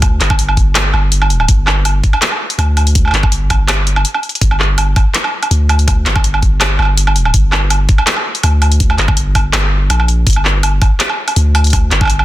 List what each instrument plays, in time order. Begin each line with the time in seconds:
Already playing: 808-style bass D2
0.02 kick, closed hi-hat, low woodblock
0.20 808-style bass G1, clap, open hi-hat
0.30 kick, low woodblock
0.39 closed hi-hat
0.49 low woodblock
0.57 kick, open hi-hat
0.75 clap, closed hi-hat, low woodblock
0.94 808-style bass G1, low woodblock
1.12 closed hi-hat
1.22 low woodblock
1.30 closed hi-hat
1.40 low woodblock
1.48 808-style bass G1, kick, closed hi-hat
1.67 clap, low woodblock
1.85 closed hi-hat, low woodblock
2.04 kick, open hi-hat
2.13 low woodblock
2.22 clap, closed hi-hat
2.32 low woodblock
2.50 open hi-hat
2.58 808-style bass D2, closed hi-hat, low woodblock
2.77 closed hi-hat, low woodblock
2.87 open hi-hat
2.95 kick, closed hi-hat
3.05 low woodblock
3.08 low woodblock
3.11 808-style bass G1, clap, open hi-hat, low woodblock
3.23 kick, low woodblock
3.32 closed hi-hat
3.50 kick, open hi-hat, low woodblock
3.68 clap, closed hi-hat, low woodblock
3.87 closed hi-hat
3.96 low woodblock
4.05 closed hi-hat
4.14 low woodblock
4.23 closed hi-hat
4.29 closed hi-hat
4.35 closed hi-hat
4.41 808-style bass G1, kick, closed hi-hat
4.51 low woodblock
4.60 clap
4.78 closed hi-hat, low woodblock
4.96 kick, open hi-hat, low woodblock
5.14 clap, closed hi-hat
5.24 low woodblock
5.43 open hi-hat, low woodblock
5.51 808-style bass D2, closed hi-hat
5.69 closed hi-hat, low woodblock
5.79 open hi-hat
5.88 kick, closed hi-hat, low woodblock
6.06 808-style bass G1, clap, open hi-hat
6.16 kick, low woodblock
6.24 closed hi-hat
6.34 low woodblock
6.42 kick, open hi-hat
6.61 clap, closed hi-hat, low woodblock
6.79 808-style bass G1, low woodblock
6.82 low woodblock
6.85 low woodblock
6.97 closed hi-hat
7.07 low woodblock
7.16 closed hi-hat
7.25 low woodblock
7.34 808-style bass G1, kick, closed hi-hat
7.52 clap, low woodblock
7.70 closed hi-hat, low woodblock
7.89 kick, open hi-hat
7.98 low woodblock
8.07 clap, closed hi-hat
8.17 low woodblock
8.35 open hi-hat
8.43 808-style bass D2, closed hi-hat, low woodblock
8.62 closed hi-hat, low woodblock
8.72 open hi-hat
8.80 kick, closed hi-hat
8.90 low woodblock
8.98 808-style bass G1, clap, open hi-hat
9.08 kick, low woodblock
9.17 closed hi-hat
9.35 kick, open hi-hat, low woodblock
9.53 808-style bass G1, clap, closed hi-hat, low woodblock
9.90 808-style bass A#1, closed hi-hat, low woodblock
10.00 low woodblock
10.08 closed hi-hat
10.27 kick, closed hi-hat
10.30 closed hi-hat
10.33 closed hi-hat, low woodblock
10.45 clap
10.63 closed hi-hat, low woodblock
10.82 kick, open hi-hat, low woodblock
11.00 clap, closed hi-hat
11.09 low woodblock
11.28 open hi-hat, low woodblock
11.36 808-style bass D2, closed hi-hat
11.55 closed hi-hat, low woodblock
11.64 open hi-hat
11.67 open hi-hat
11.70 kick, closed hi-hat, open hi-hat, low woodblock
11.91 808-style bass G1, clap, open hi-hat
12.01 kick, low woodblock
12.03 low woodblock
12.05 low woodblock
12.07 closed hi-hat, low woodblock
12.19 low woodblock